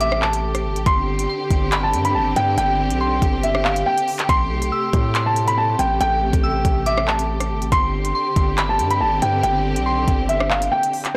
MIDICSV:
0, 0, Header, 1, 6, 480
1, 0, Start_track
1, 0, Tempo, 428571
1, 967, Time_signature, 4, 2, 24, 8
1, 12509, End_track
2, 0, Start_track
2, 0, Title_t, "Synth bell"
2, 0, Program_c, 0, 98
2, 6, Note_on_c, 0, 86, 95
2, 922, Note_off_c, 0, 86, 0
2, 1448, Note_on_c, 0, 84, 77
2, 1898, Note_off_c, 0, 84, 0
2, 1927, Note_on_c, 0, 83, 87
2, 2842, Note_off_c, 0, 83, 0
2, 3368, Note_on_c, 0, 84, 86
2, 3818, Note_off_c, 0, 84, 0
2, 5287, Note_on_c, 0, 88, 75
2, 5738, Note_off_c, 0, 88, 0
2, 5765, Note_on_c, 0, 84, 89
2, 6681, Note_off_c, 0, 84, 0
2, 7206, Note_on_c, 0, 88, 84
2, 7658, Note_off_c, 0, 88, 0
2, 7685, Note_on_c, 0, 86, 93
2, 8601, Note_off_c, 0, 86, 0
2, 9127, Note_on_c, 0, 84, 79
2, 9578, Note_off_c, 0, 84, 0
2, 9606, Note_on_c, 0, 83, 85
2, 10521, Note_off_c, 0, 83, 0
2, 11042, Note_on_c, 0, 84, 85
2, 11495, Note_off_c, 0, 84, 0
2, 12509, End_track
3, 0, Start_track
3, 0, Title_t, "Grand piano"
3, 0, Program_c, 1, 0
3, 6, Note_on_c, 1, 76, 85
3, 217, Note_off_c, 1, 76, 0
3, 245, Note_on_c, 1, 81, 78
3, 923, Note_off_c, 1, 81, 0
3, 965, Note_on_c, 1, 84, 105
3, 2008, Note_off_c, 1, 84, 0
3, 2053, Note_on_c, 1, 81, 83
3, 2264, Note_off_c, 1, 81, 0
3, 2294, Note_on_c, 1, 83, 81
3, 2393, Note_off_c, 1, 83, 0
3, 2406, Note_on_c, 1, 81, 80
3, 2617, Note_off_c, 1, 81, 0
3, 2647, Note_on_c, 1, 79, 91
3, 2858, Note_off_c, 1, 79, 0
3, 2886, Note_on_c, 1, 79, 99
3, 3801, Note_off_c, 1, 79, 0
3, 3847, Note_on_c, 1, 76, 82
3, 4057, Note_off_c, 1, 76, 0
3, 4085, Note_on_c, 1, 77, 83
3, 4296, Note_off_c, 1, 77, 0
3, 4326, Note_on_c, 1, 79, 84
3, 4777, Note_off_c, 1, 79, 0
3, 4807, Note_on_c, 1, 84, 111
3, 5849, Note_off_c, 1, 84, 0
3, 5893, Note_on_c, 1, 81, 88
3, 6104, Note_off_c, 1, 81, 0
3, 6133, Note_on_c, 1, 83, 85
3, 6232, Note_off_c, 1, 83, 0
3, 6246, Note_on_c, 1, 81, 91
3, 6457, Note_off_c, 1, 81, 0
3, 6485, Note_on_c, 1, 79, 86
3, 6697, Note_off_c, 1, 79, 0
3, 6727, Note_on_c, 1, 79, 106
3, 7642, Note_off_c, 1, 79, 0
3, 7688, Note_on_c, 1, 76, 86
3, 7898, Note_off_c, 1, 76, 0
3, 7927, Note_on_c, 1, 81, 80
3, 8604, Note_off_c, 1, 81, 0
3, 8646, Note_on_c, 1, 84, 112
3, 9689, Note_off_c, 1, 84, 0
3, 9736, Note_on_c, 1, 81, 83
3, 9946, Note_off_c, 1, 81, 0
3, 9975, Note_on_c, 1, 83, 80
3, 10073, Note_off_c, 1, 83, 0
3, 10087, Note_on_c, 1, 81, 82
3, 10297, Note_off_c, 1, 81, 0
3, 10328, Note_on_c, 1, 79, 88
3, 10538, Note_off_c, 1, 79, 0
3, 10566, Note_on_c, 1, 79, 100
3, 11481, Note_off_c, 1, 79, 0
3, 11523, Note_on_c, 1, 76, 85
3, 11735, Note_off_c, 1, 76, 0
3, 11763, Note_on_c, 1, 77, 83
3, 11975, Note_off_c, 1, 77, 0
3, 12002, Note_on_c, 1, 79, 88
3, 12455, Note_off_c, 1, 79, 0
3, 12509, End_track
4, 0, Start_track
4, 0, Title_t, "String section"
4, 0, Program_c, 2, 48
4, 0, Note_on_c, 2, 48, 91
4, 0, Note_on_c, 2, 57, 82
4, 0, Note_on_c, 2, 67, 100
4, 928, Note_off_c, 2, 48, 0
4, 928, Note_off_c, 2, 57, 0
4, 964, Note_on_c, 2, 60, 82
4, 965, Note_on_c, 2, 50, 91
4, 4767, Note_off_c, 2, 50, 0
4, 4767, Note_off_c, 2, 60, 0
4, 4804, Note_on_c, 2, 57, 81
4, 4805, Note_on_c, 2, 48, 91
4, 8602, Note_off_c, 2, 67, 0
4, 8607, Note_off_c, 2, 48, 0
4, 8607, Note_off_c, 2, 57, 0
4, 8648, Note_on_c, 2, 50, 91
4, 8648, Note_on_c, 2, 60, 82
4, 8649, Note_on_c, 2, 67, 98
4, 12449, Note_off_c, 2, 50, 0
4, 12449, Note_off_c, 2, 60, 0
4, 12449, Note_off_c, 2, 67, 0
4, 12509, End_track
5, 0, Start_track
5, 0, Title_t, "808-style bass"
5, 0, Program_c, 3, 38
5, 0, Note_on_c, 3, 33, 105
5, 727, Note_on_c, 3, 31, 101
5, 744, Note_off_c, 3, 33, 0
5, 854, Note_on_c, 3, 33, 106
5, 871, Note_off_c, 3, 31, 0
5, 961, Note_off_c, 3, 33, 0
5, 966, Note_on_c, 3, 31, 110
5, 1427, Note_off_c, 3, 31, 0
5, 1686, Note_on_c, 3, 31, 107
5, 2165, Note_on_c, 3, 43, 103
5, 2182, Note_off_c, 3, 31, 0
5, 2406, Note_on_c, 3, 31, 98
5, 2423, Note_off_c, 3, 43, 0
5, 2634, Note_off_c, 3, 31, 0
5, 2647, Note_on_c, 3, 43, 104
5, 2877, Note_off_c, 3, 43, 0
5, 2886, Note_on_c, 3, 31, 109
5, 3254, Note_on_c, 3, 35, 103
5, 3271, Note_off_c, 3, 31, 0
5, 3589, Note_off_c, 3, 35, 0
5, 3606, Note_on_c, 3, 31, 107
5, 4298, Note_off_c, 3, 31, 0
5, 4806, Note_on_c, 3, 33, 108
5, 5046, Note_on_c, 3, 35, 102
5, 5063, Note_off_c, 3, 33, 0
5, 5274, Note_off_c, 3, 35, 0
5, 5525, Note_on_c, 3, 45, 105
5, 6447, Note_off_c, 3, 45, 0
5, 6486, Note_on_c, 3, 33, 106
5, 6716, Note_off_c, 3, 33, 0
5, 6726, Note_on_c, 3, 33, 116
5, 7079, Note_off_c, 3, 33, 0
5, 7093, Note_on_c, 3, 33, 109
5, 7432, Note_off_c, 3, 33, 0
5, 7446, Note_on_c, 3, 33, 106
5, 8405, Note_on_c, 3, 31, 99
5, 8422, Note_off_c, 3, 33, 0
5, 8533, Note_on_c, 3, 33, 105
5, 8550, Note_off_c, 3, 31, 0
5, 8640, Note_off_c, 3, 33, 0
5, 8646, Note_on_c, 3, 31, 117
5, 9107, Note_off_c, 3, 31, 0
5, 9366, Note_on_c, 3, 31, 111
5, 9848, Note_on_c, 3, 43, 105
5, 9865, Note_off_c, 3, 31, 0
5, 10087, Note_on_c, 3, 31, 98
5, 10104, Note_off_c, 3, 43, 0
5, 10315, Note_off_c, 3, 31, 0
5, 10327, Note_on_c, 3, 43, 106
5, 10557, Note_off_c, 3, 43, 0
5, 10566, Note_on_c, 3, 31, 110
5, 10933, Note_on_c, 3, 35, 104
5, 10949, Note_off_c, 3, 31, 0
5, 11268, Note_off_c, 3, 35, 0
5, 11286, Note_on_c, 3, 31, 107
5, 11977, Note_off_c, 3, 31, 0
5, 12509, End_track
6, 0, Start_track
6, 0, Title_t, "Drums"
6, 6, Note_on_c, 9, 42, 73
6, 118, Note_off_c, 9, 42, 0
6, 133, Note_on_c, 9, 37, 108
6, 245, Note_off_c, 9, 37, 0
6, 246, Note_on_c, 9, 39, 110
6, 358, Note_off_c, 9, 39, 0
6, 373, Note_on_c, 9, 42, 86
6, 485, Note_off_c, 9, 42, 0
6, 612, Note_on_c, 9, 37, 72
6, 613, Note_on_c, 9, 42, 91
6, 724, Note_off_c, 9, 37, 0
6, 725, Note_off_c, 9, 42, 0
6, 853, Note_on_c, 9, 42, 70
6, 965, Note_off_c, 9, 42, 0
6, 965, Note_on_c, 9, 42, 80
6, 966, Note_on_c, 9, 36, 114
6, 1077, Note_off_c, 9, 42, 0
6, 1078, Note_off_c, 9, 36, 0
6, 1333, Note_on_c, 9, 42, 90
6, 1445, Note_off_c, 9, 42, 0
6, 1686, Note_on_c, 9, 36, 84
6, 1686, Note_on_c, 9, 42, 77
6, 1798, Note_off_c, 9, 36, 0
6, 1798, Note_off_c, 9, 42, 0
6, 1926, Note_on_c, 9, 39, 121
6, 1926, Note_on_c, 9, 42, 75
6, 2038, Note_off_c, 9, 39, 0
6, 2038, Note_off_c, 9, 42, 0
6, 2167, Note_on_c, 9, 42, 85
6, 2279, Note_off_c, 9, 42, 0
6, 2294, Note_on_c, 9, 42, 77
6, 2406, Note_off_c, 9, 42, 0
6, 2647, Note_on_c, 9, 42, 87
6, 2759, Note_off_c, 9, 42, 0
6, 2887, Note_on_c, 9, 42, 79
6, 2999, Note_off_c, 9, 42, 0
6, 3253, Note_on_c, 9, 42, 90
6, 3365, Note_off_c, 9, 42, 0
6, 3607, Note_on_c, 9, 36, 86
6, 3607, Note_on_c, 9, 42, 78
6, 3719, Note_off_c, 9, 36, 0
6, 3719, Note_off_c, 9, 42, 0
6, 3847, Note_on_c, 9, 42, 76
6, 3959, Note_off_c, 9, 42, 0
6, 3973, Note_on_c, 9, 37, 113
6, 4085, Note_off_c, 9, 37, 0
6, 4087, Note_on_c, 9, 39, 109
6, 4199, Note_off_c, 9, 39, 0
6, 4213, Note_on_c, 9, 42, 84
6, 4325, Note_off_c, 9, 42, 0
6, 4453, Note_on_c, 9, 42, 88
6, 4565, Note_off_c, 9, 42, 0
6, 4566, Note_on_c, 9, 46, 63
6, 4678, Note_off_c, 9, 46, 0
6, 4693, Note_on_c, 9, 39, 74
6, 4693, Note_on_c, 9, 42, 68
6, 4805, Note_off_c, 9, 39, 0
6, 4805, Note_off_c, 9, 42, 0
6, 4806, Note_on_c, 9, 36, 116
6, 4806, Note_on_c, 9, 42, 80
6, 4918, Note_off_c, 9, 36, 0
6, 4918, Note_off_c, 9, 42, 0
6, 5173, Note_on_c, 9, 42, 90
6, 5285, Note_off_c, 9, 42, 0
6, 5526, Note_on_c, 9, 36, 88
6, 5526, Note_on_c, 9, 42, 75
6, 5638, Note_off_c, 9, 36, 0
6, 5638, Note_off_c, 9, 42, 0
6, 5766, Note_on_c, 9, 39, 119
6, 5766, Note_on_c, 9, 42, 76
6, 5878, Note_off_c, 9, 39, 0
6, 5878, Note_off_c, 9, 42, 0
6, 6006, Note_on_c, 9, 42, 86
6, 6118, Note_off_c, 9, 42, 0
6, 6133, Note_on_c, 9, 42, 76
6, 6245, Note_off_c, 9, 42, 0
6, 6486, Note_on_c, 9, 42, 84
6, 6598, Note_off_c, 9, 42, 0
6, 6727, Note_on_c, 9, 42, 80
6, 6839, Note_off_c, 9, 42, 0
6, 7093, Note_on_c, 9, 36, 104
6, 7093, Note_on_c, 9, 42, 92
6, 7205, Note_off_c, 9, 36, 0
6, 7205, Note_off_c, 9, 42, 0
6, 7446, Note_on_c, 9, 36, 86
6, 7447, Note_on_c, 9, 42, 77
6, 7558, Note_off_c, 9, 36, 0
6, 7559, Note_off_c, 9, 42, 0
6, 7686, Note_on_c, 9, 42, 78
6, 7798, Note_off_c, 9, 42, 0
6, 7813, Note_on_c, 9, 37, 109
6, 7925, Note_off_c, 9, 37, 0
6, 7926, Note_on_c, 9, 39, 109
6, 8038, Note_off_c, 9, 39, 0
6, 8053, Note_on_c, 9, 42, 85
6, 8165, Note_off_c, 9, 42, 0
6, 8293, Note_on_c, 9, 37, 72
6, 8293, Note_on_c, 9, 42, 93
6, 8405, Note_off_c, 9, 37, 0
6, 8405, Note_off_c, 9, 42, 0
6, 8533, Note_on_c, 9, 42, 68
6, 8645, Note_off_c, 9, 42, 0
6, 8646, Note_on_c, 9, 36, 111
6, 8646, Note_on_c, 9, 42, 82
6, 8758, Note_off_c, 9, 36, 0
6, 8758, Note_off_c, 9, 42, 0
6, 9013, Note_on_c, 9, 42, 94
6, 9125, Note_off_c, 9, 42, 0
6, 9366, Note_on_c, 9, 36, 87
6, 9366, Note_on_c, 9, 42, 76
6, 9478, Note_off_c, 9, 36, 0
6, 9478, Note_off_c, 9, 42, 0
6, 9606, Note_on_c, 9, 42, 75
6, 9607, Note_on_c, 9, 39, 120
6, 9718, Note_off_c, 9, 42, 0
6, 9719, Note_off_c, 9, 39, 0
6, 9847, Note_on_c, 9, 42, 83
6, 9959, Note_off_c, 9, 42, 0
6, 9974, Note_on_c, 9, 42, 75
6, 10086, Note_off_c, 9, 42, 0
6, 10327, Note_on_c, 9, 42, 89
6, 10439, Note_off_c, 9, 42, 0
6, 10567, Note_on_c, 9, 42, 82
6, 10679, Note_off_c, 9, 42, 0
6, 10933, Note_on_c, 9, 42, 94
6, 11045, Note_off_c, 9, 42, 0
6, 11286, Note_on_c, 9, 36, 85
6, 11286, Note_on_c, 9, 42, 77
6, 11398, Note_off_c, 9, 36, 0
6, 11398, Note_off_c, 9, 42, 0
6, 11526, Note_on_c, 9, 42, 73
6, 11638, Note_off_c, 9, 42, 0
6, 11653, Note_on_c, 9, 37, 110
6, 11765, Note_off_c, 9, 37, 0
6, 11766, Note_on_c, 9, 39, 106
6, 11878, Note_off_c, 9, 39, 0
6, 11893, Note_on_c, 9, 42, 84
6, 12005, Note_off_c, 9, 42, 0
6, 12133, Note_on_c, 9, 42, 88
6, 12245, Note_off_c, 9, 42, 0
6, 12246, Note_on_c, 9, 46, 65
6, 12358, Note_off_c, 9, 46, 0
6, 12373, Note_on_c, 9, 39, 75
6, 12373, Note_on_c, 9, 42, 70
6, 12485, Note_off_c, 9, 39, 0
6, 12485, Note_off_c, 9, 42, 0
6, 12509, End_track
0, 0, End_of_file